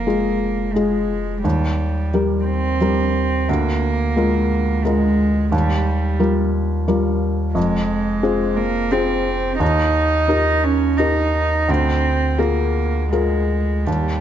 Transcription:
Already playing: sub bass F1, felt piano F2, cello A#3
0.07 felt piano G#3 F4 G#4
0.73 cello G#3, felt piano G#3 F4 G#4
1.42 felt piano D#2, sub bass D#2, cello G3
2.14 felt piano G3 G4 A#4
2.44 cello C4
2.81 felt piano G3 G4 A#4
3.48 sub bass D2, felt piano D2, cello A#3
4.16 felt piano G#3 F4 A#4
4.85 felt piano G#3 F4 A#4, cello G#3
5.52 felt piano D#2, sub bass D#2, cello G3
6.20 felt piano G3 F4 A#4
6.88 felt piano G3 F4 A#4
7.55 sub bass F1, felt piano F2, cello G#3
8.23 felt piano C4 F4 G#4
8.57 cello A#3
8.91 cello C4, felt piano C4 F4 G#4
9.60 felt piano D#2, sub bass D#2, cello D#4
10.28 felt piano D#4 G4 A#4
10.64 cello C#4
10.97 cello D#4, felt piano D#4 G4 A#4
11.68 felt piano D2, sub bass D2, cello C4
12.38 cello A#3, felt piano F4 G#4 A#4
13.10 cello G#3, felt piano F4 G#4 A#4
13.85 sub bass D#2, felt piano D#2, cello G3

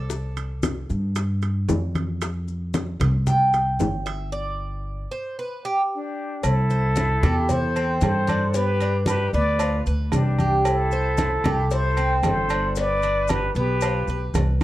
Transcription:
Already playing: upright bass C2, cuban tres A4
0.10 high bongo, high conga, maracas
0.37 high conga, high timbale, maracas
0.63 high bongo, high conga, high timbale, low timbale, maracas
0.90 upright bass G2, high bongo, high conga, maracas
1.16 high bongo, high conga, high timbale, maracas
1.42 high bongo, high conga, high timbale, maracas
1.69 upright bass F2, high bongo, low bongo, high conga, low timbale, maracas
1.95 high bongo, high conga, high timbale, maracas
2.21 high bongo, high conga, high timbale, maracas
2.48 high conga, maracas
2.74 high bongo, high conga, high timbale, low timbale, maracas
3.00 upright bass C2, high bongo, high conga, low conga, high timbale, maracas
3.27 cuban tres G5, high bongo, high conga, low conga, maracas
3.53 high bongo, high conga, high timbale, maracas
3.79 upright bass G1, high bongo, low bongo, high conga, low timbale, maracas
4.06 cuban tres E5, high bongo, high timbale, maracas
4.32 cuban tres D5
5.11 cuban tres C5
5.39 cuban tres B4
5.65 cuban tres G4
5.94 flute D4, muted trumpet G4
6.43 upright bass C2, flute E4, muted trumpet A4, cowbell, high conga, low agogo, maracas
6.70 cuban tres C5, high conga, maracas
6.96 cowbell, high conga, low timbale, low agogo, maracas
7.23 upright bass E2, cuban tres G4, high conga, low conga, low agogo, maracas
7.49 cuban tres E4, flute A4, muted trumpet C5, cowbell, high conga, low conga, maracas
7.76 cuban tres C4, high conga, low agogo, maracas
8.01 upright bass G2, flute A4, muted trumpet C5, cowbell, high conga, low timbale, low agogo, maracas
8.27 cuban tres D4, cowbell, high conga, low agogo, maracas
8.54 cuban tres B3, flute G4, muted trumpet B4, cowbell, high conga, maracas
8.80 cuban tres D4, high conga, low agogo, maracas
9.06 flute G4, muted trumpet B4, cowbell, high conga, low timbale, low agogo, maracas
9.33 upright bass D2, cuban tres B3, flute B4, muted trumpet D5, high conga, maracas
9.59 cuban tres F4, cowbell, high conga, low agogo, maracas
9.86 upright bass D2, cuban tres B4, high conga, maracas
10.12 upright bass C2, flute D4, muted trumpet G4, cowbell, high conga, low timbale, low agogo, maracas
10.38 cuban tres G4, high conga, low agogo, maracas
10.65 flute E4, muted trumpet A4, cowbell, high conga, low agogo, maracas
10.91 cuban tres C5, high conga, maracas
11.18 cowbell, high conga, low timbale, low agogo, maracas
11.44 upright bass C2, cuban tres G4, high conga, low conga, low agogo, maracas
11.70 cuban tres E4, flute A4, muted trumpet C5, cowbell, high conga, maracas
11.97 cuban tres C4, high conga, low agogo, maracas
12.23 upright bass G1, flute A4, muted trumpet C5, cowbell, high conga, low timbale, low agogo, maracas
12.49 cuban tres D4, cowbell, low agogo, maracas
12.76 cuban tres B3, flute B4, muted trumpet D5, cowbell, high conga, maracas
13.02 cuban tres D4, high conga, low agogo, maracas
13.28 flute G4, muted trumpet B4, cowbell, high conga, low timbale, low agogo, maracas
13.55 upright bass B1, cuban tres B3, flute G4, muted trumpet B4, high conga, maracas
13.81 cuban tres F4, cowbell, high conga, low agogo, maracas
14.07 upright bass B1, cuban tres B4, high conga, maracas
14.34 upright bass C2, cowbell, high conga, low timbale, low agogo, maracas

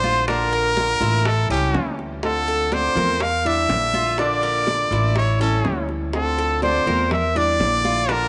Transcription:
Already playing: upright bass A#1, nylon-string guitar D3 G3 D4 E4, trumpet C5
0.03 cuban tres F4, high bongo, high conga
0.27 nylon-string guitar D3 A#3 D4 F4, cuban tres D4, trumpet A#4, high bongo, high conga
0.53 cuban tres A#4, high conga
0.76 nylon-string guitar D3 A#3 D4 F4, high bongo, high conga
1.00 upright bass A1, nylon-string guitar A#3 D4 F4, cuban tres E4, high bongo, high conga
1.25 trumpet A4, muted nylon-string guitar stroke, high bongo, high conga
1.49 upright bass C#2, nylon-string guitar G3 C#4 E4, cuban tres C#4, trumpet G4, high bongo, high conga
1.73 upright bass D2, nylon-string guitar E3 G3 C#4 E4, high bongo, low bongo, high conga
1.99 high bongo
2.23 nylon-string guitar D3 A3 C4 F4, trumpet A4, high bongo, high conga
2.48 cuban tres A4, high conga
2.72 nylon-string guitar D3 A3 C4 F4, trumpet C5, cuban tres D5, high bongo, high conga
2.95 upright bass E2, nylon-string guitar A3 C4 F4, cuban tres A#4, high bongo, high conga, low conga
3.20 trumpet F5, muted nylon-string guitar stroke, high bongo
3.45 nylon-string guitar G3 D4 E4, cuban tres D4, trumpet E5, high bongo, high conga
3.69 upright bass A#1, nylon-string guitar D3 G3 D4 E4, high bongo, low bongo, high conga
3.94 cuban tres F4, high bongo, high conga
4.18 nylon-string guitar D3 A#3 D4 F4, cuban tres D4, trumpet D5, high bongo, high conga
4.43 cuban tres A#4, high conga
4.67 nylon-string guitar D3 A#3 D4 F4, high bongo, high conga
4.91 upright bass A1, nylon-string guitar A#3 D4 F4, cuban tres E4, high bongo, high conga
5.15 trumpet C#5, muted nylon-string guitar stroke, high bongo, high conga
5.40 nylon-string guitar G3 C#4 E4, cuban tres C#4, trumpet A4, high bongo, high conga
5.64 upright bass D2, nylon-string guitar E3 G3 C#4 E4, high bongo, low bongo, high conga
5.89 high bongo
6.13 nylon-string guitar D3 A3 C4 F4, trumpet A4, high bongo, high conga
6.38 cuban tres A4, high conga
6.62 nylon-string guitar D3 A3 C4 F4, trumpet C5, cuban tres D5, high bongo, high conga
6.86 upright bass E2, nylon-string guitar A3 C4 F4, cuban tres A#4, high bongo, high conga, low conga
7.11 trumpet E5, muted nylon-string guitar stroke, high bongo, high conga, low conga
7.35 nylon-string guitar G3 D4 E4, cuban tres D4, trumpet D5, high bongo, high conga
7.59 upright bass A#1, nylon-string guitar D3 G3 D4 E4, high bongo, low bongo, high conga
7.85 cuban tres F4, high bongo, high conga
8.09 nylon-string guitar D3 A#3 D4 F4, cuban tres D4, trumpet A#4, high bongo, high conga

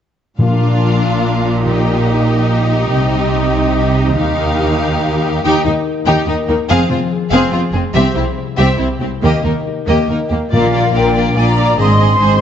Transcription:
0.39 double bass section A#1, timpani A#2, cello section A#2, harp A#2, viola section D4, violin section F4 F5
0.61 harp F3
0.82 harp F4
1.03 harp D5
1.24 harp F5
1.45 harp F4
1.65 harp A#2, timpani A#2, viola section D#4, violin section G4 D#5
1.86 harp A#3
2.08 harp G4
2.29 harp D#5
2.51 harp G4
2.72 harp D#4
2.92 double bass section C2, harp C3, cello section C3
3.14 harp G3
3.35 harp G4
3.56 harp D#5
3.77 harp C5
3.98 harp G4
4.18 double bass section D#2, cello section D#2, harp D#3, viola section D#4, violin section G4 F5
4.39 harp A#3
4.60 harp G4
4.80 harp F5
5.02 harp A#4
5.23 harp G4
5.43 cello section D#2, double bass section D#2, harp D#3, viola section D#4, violin section G4 G5
5.65 cello section D#2, double bass section D#2, harp A#3, violin section D#4 D#5, viola section D#4
5.86 harp G4
6.06 cello section D#2, double bass section D#2, viola section D#4, violin section G4 G5, harp D#5
6.27 cello section D#2, double bass section D#2, viola section D#4, violin section D#4 D#5, harp A#4
6.48 cello section D#2, double bass section D#2, violin section A#3 A#4, viola section D#4, harp G4
6.69 double bass section F1, cello section F2, harp F3, viola section C4, violin section G#4 F5
6.89 double bass section F1, cello section F2, viola section C4, harp C4, violin section F4 C5
7.11 harp G#4
7.30 double bass section F1, cello section F2, viola section C4, violin section G#4 F5, harp F5
7.52 double bass section F1, cello section F2, viola section C4, violin section F4 C5, harp C5
7.73 double bass section F1, cello section F2, viola section C4, violin section C4 G#4, harp G#4
7.93 double bass section C2, cello section C2, harp C3, viola section C4, violin section G4 E5
8.15 double bass section C2, cello section C2, harp G3, viola section C4, violin section E4 C5
8.37 harp E4
8.57 cello section C2, double bass section C2, viola section C4, violin section G4 E5, harp C5
8.78 double bass section C2, cello section C2, viola section C4, violin section E4 C5, harp G4
9.01 cello section C2, double bass section C2, viola section C4, violin section C4 G4, harp E4
9.22 cello section D#2, double bass section D#2, harp D#3, viola section A#3, violin section G4 D#5
9.44 cello section D#2, double bass section D#2, viola section A#3, harp A#3, violin section D#4 A#4
9.67 harp G4
9.87 cello section D#2, double bass section D#2, viola section A#3, violin section G4 D#5, harp D#5
10.08 double bass section D#2, cello section D#2, viola section A#3, violin section D#4 A#4, harp A#4
10.30 double bass section D#2, cello section D#2, viola section A#3, violin section A#3 G4, harp G4
10.51 double bass section A#1, cello section A#2, harp A#2, timpani A#2, violin section A#3 F4 D5, viola section A#4, flute section F5
10.72 violin section A#3 F4 D5, harp A#3
10.93 double bass section A#1, cello section A#2, violin section A#3 F4 D5, harp D4, flute section G5
11.14 violin section A#3 F4 D5, harp A#4
11.35 double bass section A#1, cello section A#2, violin section A#3 F4 D5, harp F4, viola section D5, flute section G#5
11.47 flute section A#5
11.56 violin section A#3 F4 D5, harp D4
11.77 double bass section G#1, harp G#2, cello section G#2, violin section C4 G#4 C5, viola section D#5, flute section C6
11.98 harp C4, violin section C4 G#4 C5
12.18 double bass section G#1, cello section G#2, violin section C4 G#4 C5, harp D#4, viola section C5

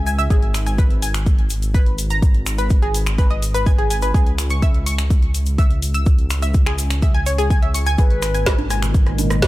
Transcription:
Already playing: detuned saw bass C#2
0.07 synth pluck G#5, shaker
0.19 synth pluck E5, shaker
0.30 detuned saw bass G#1, synth pluck G#4, kick, closed hi-hat, shaker
0.42 closed hi-hat
0.54 finger snap, open hi-hat, shaker
0.66 synth pluck G#5, closed hi-hat, shaker
0.78 synth pluck B4, kick, closed hi-hat, shaker
0.90 closed hi-hat
1.02 synth pluck G#5, open hi-hat, shaker
1.14 finger snap, closed hi-hat, shaker
1.26 kick, closed hi-hat, shaker
1.38 closed hi-hat
1.50 open hi-hat, shaker
1.62 closed hi-hat, shaker
1.74 synth pluck B4, kick, closed hi-hat, shaker
1.86 closed hi-hat
1.98 open hi-hat, shaker
2.10 synth pluck A#5, closed hi-hat, shaker
2.22 kick, closed hi-hat, shaker
2.34 closed hi-hat
2.46 finger snap, open hi-hat, shaker
2.58 synth pluck B4, closed hi-hat, shaker
2.70 kick, closed hi-hat, shaker
2.82 synth pluck G#4, closed hi-hat
2.94 open hi-hat, shaker
3.06 finger snap, closed hi-hat, shaker
3.18 synth pluck B4, kick, closed hi-hat, shaker
3.30 synth pluck D#5, closed hi-hat
3.42 open hi-hat, shaker
3.54 synth pluck B4, closed hi-hat, shaker
3.66 synth pluck G#5, kick, closed hi-hat, shaker
3.78 synth pluck G#4, closed hi-hat
3.90 synth pluck G#5, open hi-hat, shaker
4.02 synth pluck B4, closed hi-hat, shaker
4.14 detuned saw bass C#2, synth pluck G#4, kick, closed hi-hat, shaker
4.26 closed hi-hat
4.38 finger snap, open hi-hat, shaker
4.50 synth pluck C#6, closed hi-hat, shaker
4.62 synth pluck E5, kick, closed hi-hat, shaker
4.74 closed hi-hat
4.86 synth pluck C#6, open hi-hat, shaker
4.98 finger snap, closed hi-hat, shaker
5.10 kick, closed hi-hat, shaker
5.22 closed hi-hat
5.34 open hi-hat, shaker
5.46 closed hi-hat, shaker
5.58 synth pluck E5, kick, closed hi-hat, shaker
5.71 closed hi-hat
5.82 open hi-hat, shaker
5.94 synth pluck E6, closed hi-hat, shaker
6.06 kick, closed hi-hat, shaker
6.18 closed hi-hat
6.30 finger snap, open hi-hat, shaker
6.42 synth pluck E5, closed hi-hat, shaker
6.54 kick, closed hi-hat, shaker
6.66 synth pluck G#4, finger snap, closed hi-hat
6.78 open hi-hat, shaker
6.90 finger snap, closed hi-hat, shaker
7.02 synth pluck E5, kick, closed hi-hat, shaker
7.14 synth pluck G#5, closed hi-hat
7.26 synth pluck C#5, open hi-hat, shaker
7.38 synth pluck G#4, closed hi-hat, shaker
7.50 synth pluck G#5, kick, closed hi-hat, shaker
7.62 synth pluck E5, closed hi-hat
7.74 synth pluck C#6, open hi-hat, shaker
7.86 synth pluck G#5, closed hi-hat, shaker
7.98 detuned saw bass G#1, ambient pad G#2 A#2 B2 D#3 D#4, synth pluck G#4, analog synth lead B4, kick, closed hi-hat, shaker
8.10 closed hi-hat
8.22 finger snap, cross-stick, open hi-hat, shaker
8.34 synth pluck G#5, closed hi-hat, shaker
8.46 synth pluck B4, kick, cross-stick, snare, closed hi-hat, shaker
8.58 closed hi-hat, high conga
8.70 synth pluck G#5, cross-stick, open hi-hat, shaker
8.82 finger snap, closed hi-hat, shaker
8.94 kick, closed hi-hat, shaker
9.06 cross-stick, closed hi-hat
9.18 open hi-hat, high conga, shaker
9.30 cross-stick, closed hi-hat, shaker
9.42 synth pluck B4, analog synth lead C#5, kick, snare, closed hi-hat, shaker

